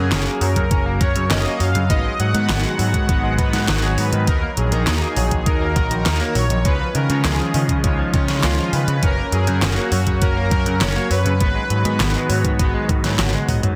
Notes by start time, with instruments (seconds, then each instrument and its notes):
Already playing: analog polysynth F#3 C#4 F#4 A#4, analog synth pad F#3 A#3 C#4, supersaw synth G#4
0.11 picked electric bass F#1, clean electric guitar C#4, snare, clap, closed hi-hat
0.26 clean electric guitar A#3
0.41 picked electric bass F#2, clean electric guitar F#3, analog polysynth F#3 C#4 F#4 C#5, supersaw synth A#4, open hi-hat
0.56 picked electric bass F#2, clean electric guitar C#3, kick, closed hi-hat
0.71 picked electric bass F#1, analog polysynth F#3 C#4 F#4 A#4, clean electric guitar C#4, kick, closed hi-hat
0.86 clean electric guitar A#3
1.01 picked electric bass F#2, analog polysynth F#3 C#4 F#4 A#4, clean electric guitar F#3, supersaw synth C#5, kick, closed hi-hat
1.16 picked electric bass F#2, clean electric guitar C#3, closed hi-hat
1.30 picked electric bass F#1, clean electric guitar C#4, supersaw synth D#5, snare, clap, closed hi-hat
1.45 analog polysynth F#3 C#4 F#4 C#5, clean electric guitar A#3
1.60 picked electric bass F#2, clean electric guitar F#3, supersaw synth F5, open hi-hat
1.75 picked electric bass F#2, clean electric guitar C#3, closed hi-hat
1.90 picked electric bass G#1, analog polysynth G#2 G#3 B3 D#4 F#4 B4, analog synth pad D#3 G#3 B3 F#4, clean electric guitar B3, supersaw synth D#5, kick, closed hi-hat
2.05 clean electric guitar G#3
2.19 picked electric bass G#2, clean electric guitar F#3, supersaw synth F#5, closed hi-hat
2.34 analog polysynth G#2 G#3 B3 D#4 F#4 B4, picked electric bass G#2, clean electric guitar D#3, closed hi-hat
2.49 picked electric bass G#1, clean electric guitar B3, snare, clap, closed hi-hat
2.64 clean electric guitar G#3
2.79 analog polysynth G#2 G#3 B3 D#4 F#4 C#5, picked electric bass G#2, clean electric guitar F#3, open hi-hat
2.94 picked electric bass G#2, clean electric guitar D#3, kick, closed hi-hat
3.09 picked electric bass G#1, analog polysynth G#2 G#3 B3 D#4 F#4 B4, clean electric guitar B3, kick, closed hi-hat
3.23 clean electric guitar G#3
3.38 analog polysynth G#2 G#3 B3 D#4 F#4 B4, picked electric bass G#2, clean electric guitar B3, kick, closed hi-hat
3.53 picked electric bass G#2, clean electric guitar B3, snare, closed hi-hat
3.68 picked electric bass G#1, clean electric guitar D#4, supersaw synth F#4, snare, clap, closed hi-hat
3.83 analog polysynth G#2 G#3 B3 D#4 F#4 C#5, clean electric guitar G#4
3.98 picked electric bass G#2, clean electric guitar B3, supersaw synth B4, open hi-hat
4.13 picked electric bass G#2, clean electric guitar D#3, closed hi-hat
4.27 picked electric bass D#2, analog polysynth D#3 D#4 F#4 A#4, analog synth pad A#3 D#4, clean electric guitar D#4, supersaw synth A#4, kick, closed hi-hat
4.42 clean electric guitar A#3
4.57 picked electric bass A#1, clean electric guitar F#3, supersaw synth G#4, closed hi-hat
4.72 picked electric bass A#1, clean electric guitar D#3, analog polysynth D#3 D#4 F#4 A#4, closed hi-hat
4.87 picked electric bass D#2, clean electric guitar D#4, snare, clap, closed hi-hat
5.02 clean electric guitar A#3
5.16 picked electric bass A#1, analog polysynth D#3 D#4 F#4 C#5, clean electric guitar F#3, open hi-hat
5.31 picked electric bass A#1, clean electric guitar D#3, kick, closed hi-hat
5.46 picked electric bass D#2, analog polysynth D#3 D#4 F#4 A#4, clean electric guitar D#4, supersaw synth A#4, kick, closed hi-hat
5.61 clean electric guitar A#3
5.76 picked electric bass A#1, analog polysynth D#3 D#4 F#4 A#4, clean electric guitar F#3, kick, closed hi-hat
5.91 picked electric bass A#1, clean electric guitar D#3, closed hi-hat
6.06 picked electric bass D#2, clean electric guitar D#4, snare, clap, closed hi-hat
6.21 analog polysynth D#3 D#4 F#4 C#5, clean electric guitar A#3
6.35 picked electric bass A#1, clean electric guitar F#3, supersaw synth C#5, open hi-hat
6.50 picked electric bass A#1, clean electric guitar D#3, closed hi-hat
6.65 picked electric bass C#2, analog polysynth C#3 G#3 C#4 D#4 F4 C#5, analog synth pad D#3 F3 G#3 C#4 F4, clean electric guitar G#3, supersaw synth B4, kick, closed hi-hat
6.80 clean electric guitar F3
6.95 picked electric bass C#3, clean electric guitar D#3, supersaw synth A#4, closed hi-hat
7.10 analog polysynth C#3 G#3 C#4 D#4 F4 C#5, picked electric bass C#3, clean electric guitar C#3, closed hi-hat
7.24 picked electric bass C#2, clean electric guitar G#3, supersaw synth G#4, snare, clap, closed hi-hat
7.40 clean electric guitar F3
7.54 analog polysynth C#3 G#3 C#4 D#4 F4 D#5, picked electric bass C#3, clean electric guitar D#3, open hi-hat
7.69 picked electric bass C#3, clean electric guitar C#3, kick, closed hi-hat
7.84 picked electric bass C#2, analog polysynth C#3 G#3 C#4 D#4 F4 C#5, clean electric guitar G#3, kick, closed hi-hat
7.99 clean electric guitar F3
8.14 analog polysynth C#3 G#3 C#4 D#4 F4 C#5, picked electric bass C#3, clean electric guitar D#3, kick, closed hi-hat
8.28 picked electric bass C#3, clean electric guitar C#3, snare, closed hi-hat
8.43 picked electric bass C#2, clean electric guitar G#3, supersaw synth F4, snare, clap, closed hi-hat
8.58 analog polysynth C#3 G#3 C#4 D#4 F4 D#5, clean electric guitar F3
8.73 picked electric bass C#3, clean electric guitar D#3, supersaw synth B4, open hi-hat
8.88 picked electric bass C#3, clean electric guitar C#3, closed hi-hat
9.03 picked electric bass F#1, analog polysynth F#3 C#4 F#4 A#4, analog synth pad F#3 A#3, clean electric guitar C#4, supersaw synth A#4, kick, closed hi-hat
9.18 clean electric guitar A#3
9.32 picked electric bass F#2, clean electric guitar F#3, supersaw synth G#4, closed hi-hat
9.47 picked electric bass F#2, clean electric guitar C#3, analog polysynth F#3 C#4 F#4 A#4, closed hi-hat
9.62 picked electric bass F#1, clean electric guitar C#4, supersaw synth F#4, snare, clap, closed hi-hat
9.77 clean electric guitar A#3
9.92 picked electric bass F#2, analog polysynth F#3 C#4 F#4 C#5, clean electric guitar F#3, open hi-hat
10.07 picked electric bass F#2, clean electric guitar C#3, kick, closed hi-hat
10.21 picked electric bass F#1, analog polysynth F#3 C#4 F#4 A#4, clean electric guitar C#4, supersaw synth A#4, kick, closed hi-hat
10.37 clean electric guitar A#3
10.51 picked electric bass F#2, analog polysynth F#3 C#4 F#4 A#4, clean electric guitar F#3, kick, closed hi-hat
10.66 picked electric bass F#2, clean electric guitar C#3, closed hi-hat
10.81 picked electric bass F#1, clean electric guitar C#4, supersaw synth C#5, snare, clap, closed hi-hat
10.96 analog polysynth F#3 C#4 F#4 C#5, clean electric guitar A#3
11.11 picked electric bass F#2, clean electric guitar F#3, supersaw synth B4, open hi-hat
11.25 picked electric bass F#2, clean electric guitar C#3, closed hi-hat
11.40 picked electric bass G#1, analog polysynth G#2 G#3 B3 D#4 F#4 B4, analog synth pad D#3 G#3 B3 F#4, clean electric guitar B3, kick, closed hi-hat
11.55 clean electric guitar G#3
11.70 picked electric bass G#2, clean electric guitar F#3, closed hi-hat
11.85 analog polysynth G#2 G#3 B3 D#4 F#4 B4, picked electric bass G#2, clean electric guitar D#3, closed hi-hat
12.00 picked electric bass G#1, clean electric guitar B3, snare, clap, closed hi-hat
12.15 clean electric guitar G#3
12.29 analog polysynth G#2 G#3 B3 D#4 F#4 C#5, picked electric bass G#2, clean electric guitar F#3, open hi-hat
12.44 picked electric bass G#2, clean electric guitar D#3, kick, closed hi-hat
12.59 picked electric bass G#1, analog polysynth G#2 G#3 B3 D#4 F#4 B4, clean electric guitar B3, kick, closed hi-hat
12.74 clean electric guitar G#3
12.89 picked electric bass G#2, clean electric guitar D#3, kick, closed hi-hat
13.04 picked electric bass G#2, clean electric guitar F#3, snare, closed hi-hat
13.19 picked electric bass G#1, analog polysynth G#2 G#3 B3 D#4 F#4 B4, clean electric guitar F#3, snare, clap, closed hi-hat, high tom
13.34 clean electric guitar G#3, high tom
13.48 picked electric bass G#2, clean electric guitar F#3, analog polysynth G#3 B3 D#4 F#4 D#5, kick, open hi-hat, mid tom
13.63 picked electric bass G#2, clean electric guitar F#3, closed hi-hat, mid tom